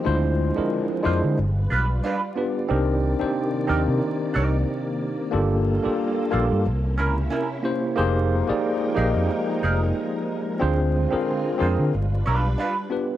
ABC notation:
X:1
M:4/4
L:1/16
Q:"Swing 16ths" 1/4=91
K:Cm
V:1 name="Hollow-body jazz guitar"
z6 [DFc]2 z2 [DF=B]2 [DFB]2 z2 | z6 [EBd]2 z2 [EBd]2 z4 | z6 [B,F=A]2 z2 [_D=EB]2 [DEB]2 z2 | z6 [EAB]2 z2 [EAB]2 z4 |
z6 [FAc]2 z2 [DF=B]2 [DFB]2 z2 |]
V:2 name="Tine electric piano"
[A,D=EFc]2 z [A,DEFB]2 z [A,DEFc]2 z6 [=B,DFG=B]2 | [CDEGB]2 z [CDEGc]2 z [CDEGB]6 z4 | [B,DFG=A]2 z [B,DFGA]2 z [B,DFGA]2 z6 [B,_D=EGc]2 | [B,EGAc]2 z [B,EGAd]2 z [B,EGAe]6 z4 |
[CDFAc]2 z [CDFAB]2 z [CDFAB]2 z6 [=B,DFG=B]2 |]
V:3 name="String machine"
[D,F,A,C]8 [G,F=Bd]8 | [C,E,B,]16 | [G,B,F=A]8 [C,B,_D=E]8 | [F,A,EBg]16 |
[D,A,CF]8 [G,D=B]8 |]
V:4 name="Fingered electric bass" clef=bass
D,,3 z3 F,, D, G,,,2 =B,,,2 z4 | C,,3 z3 E,, C, z2 C,,2 z4 | G,,,3 z3 B,,, G,, C,,2 _D,,2 z4 | F,,,3 z3 B,,, F,, z2 F,,,2 z4 |
D,,3 z3 F,, D, G,,,2 =B,,,2 z4 |]